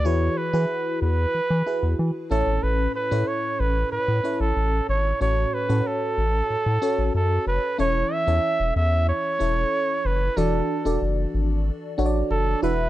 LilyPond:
<<
  \new Staff \with { instrumentName = "Flugelhorn" } { \time 4/4 \key a \major \tempo 4 = 93 cis''8 b'4 b'4. r8 a'8 | b'8 b'8 cis''8 b'8 b'8. a'8. cis''8 | cis''8 b'8 a'2 a'8 b'8 | cis''8 e''4 e''8 cis''4. b'8 |
a'4 r2 a'8 b'8 | }
  \new Staff \with { instrumentName = "FM electric piano" } { \time 4/4 \key a \major <e' fis' gis' b'>8. <e' fis' gis' b'>4. r16 <e' fis' gis' b'>4 <cis' e' a' cis''>8~ | <cis' e' a' cis''>8 r16 <cis' e' a' cis''>4. r16 <cis' e' a' cis''>4~ <cis' e' a' cis''>16 r16 | <cis' fis' a' cis''>8. <cis' fis' a' cis''>4. r16 <cis' fis' a' cis''>4~ <cis' fis' a' cis''>16 r16 | <cis' e' a' cis''>8. <cis' e' a' cis''>4. r16 <cis' e' a' cis''>4~ <cis' e' a' cis''>16 r16 |
<d' fis' a' d''>8. <d' fis' a' d''>4. r16 <d' fis' a' cis'' d''>4 <e' fis' b' e''>8 | }
  \new Staff \with { instrumentName = "FM electric piano" } { \clef bass \time 4/4 \key a \major e4. r2 a,8~ | a,4 r2. | a,4. r2 r8 | e4. r2 r8 |
e4. r2 e8 | }
  \new Staff \with { instrumentName = "Analog synth bass" } { \clef bass \time 4/4 \key a \major e,8 r16 e16 r8 e,8 e16 e16 r16 e,16 e16 r16 a,,16 gis,,16 | a,,8 r16 a,16 r8 a,,8 a,16 a,16 r16 a,,16 a,,8 gis,,8 | a,,8 r16 a,16 r8 a,,8 a,16 a,16 r16 a,,16 fis,8 fis,,16 r16 | e,,8 r16 e,16 r16 e,,16 e,8. r16 e,,8 r8 fis,,8 |
e,,8 r16 e,,16 fis,,8 gis,,8. r16 a,,8 fis,,8 e,,8 | }
>>